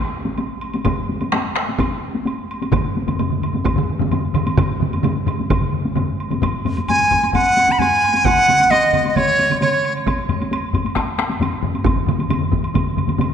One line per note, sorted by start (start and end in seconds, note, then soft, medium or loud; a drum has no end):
0.25 taiko high medium
0.38 taiko high medium
0.38 high woodblock soft
0.61 high woodblock soft
0.74 taiko high medium
0.74 high woodblock soft
0.84 taiko medium
0.84 taiko low-mid loud
0.84 taiko mid loud
0.84 taiko high medium
0.84 high woodblock medium
1.09 taiko high medium
1.21 taiko high medium
1.21 high woodblock soft
1.32 taiko rim medium
1.32 taiko high medium
1.32 high woodblock soft
1.56 taiko rim medium
1.56 high woodblock soft
1.68 taiko high medium
1.79 taiko medium
1.79 taiko high medium
1.79 high woodblock medium
2.15 taiko high medium
2.26 taiko high medium
2.26 high woodblock soft
2.51 high woodblock soft
2.62 taiko high medium
2.62 high woodblock soft
2.72 taiko medium
2.72 taiko low-mid loud
2.72 taiko mid loud
2.72 taiko high medium
2.72 high woodblock soft
2.97 taiko high medium
3.08 taiko low-mid medium
3.08 taiko mid medium
3.08 taiko high medium
3.08 high woodblock soft
3.19 taiko low-mid medium
3.19 taiko mid medium
3.19 taiko high medium
3.19 high woodblock soft
3.30 taiko low-mid medium
3.30 taiko mid medium
3.42 taiko low-mid medium
3.42 taiko mid medium
3.42 high woodblock soft
3.53 taiko low-mid medium
3.53 taiko mid medium
3.53 taiko high soft
3.65 taiko medium
3.65 taiko high medium
3.65 high woodblock medium
3.76 taiko low-mid medium
3.76 taiko mid loud
3.99 taiko low-mid loud
3.99 taiko mid medium
3.99 taiko high medium
4.11 taiko low-mid loud
4.11 taiko mid medium
4.11 taiko high medium
4.11 high woodblock soft
4.34 taiko low-mid loud
4.34 taiko mid loud
4.34 high woodblock soft
4.47 taiko high medium
4.47 high woodblock soft
4.57 taiko loud
4.57 taiko low-mid medium
4.57 taiko mid medium
4.57 taiko high medium
4.57 high woodblock medium
4.80 taiko low-mid medium
4.80 taiko mid loud
4.80 taiko high soft
4.93 taiko high medium
4.93 high woodblock soft
5.03 taiko low-mid loud
5.03 taiko mid loud
5.03 taiko high medium
5.03 high woodblock soft
5.26 taiko low-mid medium
5.26 taiko mid loud
5.26 high woodblock soft
5.40 taiko high soft
5.50 taiko loud
5.50 taiko low-mid medium
5.50 taiko mid medium
5.50 taiko high medium
5.50 high woodblock medium
5.61 taiko low-mid medium
5.61 taiko mid medium
5.73 taiko low-mid medium
5.73 taiko mid medium
5.85 taiko high medium
5.95 taiko low-mid loud
5.95 taiko mid medium
5.95 taiko high medium
5.95 high woodblock soft
6.20 high woodblock soft
6.30 taiko low-mid medium
6.30 taiko mid medium
6.30 taiko high medium
6.30 high woodblock soft
6.42 taiko medium
6.42 taiko low-mid medium
6.42 taiko high medium
6.42 high woodblock medium
6.65 taiko low-mid medium
6.65 taiko high soft
6.65 high woodblock soft
6.77 taiko high medium
6.77 high woodblock soft
6.88 7.31 G#5 medium
6.88 taiko low-mid medium
6.88 taiko high medium
6.88 high woodblock medium
6.99 taiko low-mid medium
7.11 taiko medium
7.11 taiko low-mid medium
7.11 taiko high soft
7.11 high woodblock soft
7.23 taiko high soft
7.23 high woodblock soft
7.33 7.73 F#5 medium
7.33 taiko medium
7.33 taiko low-mid medium
7.33 taiko high medium
7.33 high woodblock soft
7.57 taiko high soft
7.57 high woodblock soft
7.68 7.81 B5 medium
7.68 taiko low-mid medium
7.68 taiko high medium
7.68 high woodblock soft
7.79 8.27 G#5 medium
7.79 taiko low-mid medium
7.79 taiko high medium
7.79 high woodblock soft
8.04 high woodblock soft
8.14 taiko high medium
8.14 high woodblock soft
8.25 8.72 F#5 loud
8.25 taiko medium
8.25 taiko mid medium
8.25 taiko high medium
8.25 high woodblock medium
8.48 taiko mid medium
8.48 taiko high soft
8.48 high woodblock soft
8.60 taiko high medium
8.60 high woodblock soft
8.70 9.10 D#5 medium
8.70 taiko mid medium
8.70 taiko high medium
8.70 high woodblock medium
8.82 taiko mid medium
8.93 taiko medium
8.93 taiko mid medium
8.93 taiko high soft
8.93 high woodblock soft
9.05 taiko high soft
9.05 high woodblock soft
9.10 9.17 D#5 soft
9.16 9.60 C#5 medium
9.16 taiko medium
9.16 taiko mid loud
9.16 taiko high medium
9.16 high woodblock medium
9.39 taiko high soft
9.39 high woodblock soft
9.50 taiko mid medium
9.50 taiko high soft
9.50 high woodblock soft
9.61 9.93 C#5 medium
9.61 taiko mid medium
9.61 taiko high medium
9.61 high woodblock medium
9.85 high woodblock soft
9.97 high woodblock soft
10.06 taiko medium
10.06 taiko high medium
10.06 high woodblock medium
10.29 taiko low-mid medium
10.29 taiko high soft
10.29 high woodblock soft
10.40 taiko high soft
10.40 high woodblock soft
10.51 taiko high medium
10.51 high woodblock medium
10.73 taiko medium
10.73 taiko low-mid medium
10.73 taiko high medium
10.73 high woodblock soft
10.85 taiko high soft
10.85 high woodblock soft
10.96 taiko rim medium
10.96 taiko medium
10.96 taiko high medium
10.96 high woodblock medium
11.18 taiko rim medium
11.18 taiko high soft
11.18 high woodblock soft
11.30 taiko high medium
11.30 high woodblock soft
11.41 taiko low-mid medium
11.41 taiko high medium
11.41 high woodblock soft
11.63 taiko low-mid loud
11.74 taiko high medium
11.74 high woodblock soft
11.85 taiko loud
11.85 taiko low-mid medium
11.85 taiko mid medium
11.85 taiko high medium
11.85 high woodblock soft
11.96 taiko low-mid medium
11.96 taiko mid medium
12.06 taiko low-mid medium
12.06 taiko mid medium
12.06 taiko high soft
12.06 high woodblock soft
12.19 taiko high medium
12.19 high woodblock soft
12.29 taiko low-mid medium
12.29 taiko mid medium
12.29 taiko high medium
12.29 high woodblock medium
12.40 taiko low-mid medium
12.40 taiko mid medium
12.52 taiko medium
12.52 taiko low-mid medium
12.52 taiko mid medium
12.52 taiko high medium
12.64 high woodblock soft
12.74 taiko medium
12.74 taiko low-mid medium
12.74 taiko mid medium
12.74 taiko high medium
12.74 high woodblock soft
12.96 taiko low-mid medium
12.96 taiko mid medium
12.96 taiko high soft
12.96 high woodblock soft
13.08 taiko low-mid medium
13.08 taiko mid medium
13.08 taiko high medium
13.08 high woodblock soft
13.18 taiko low-mid loud
13.18 taiko mid medium
13.18 taiko high medium
13.18 high woodblock soft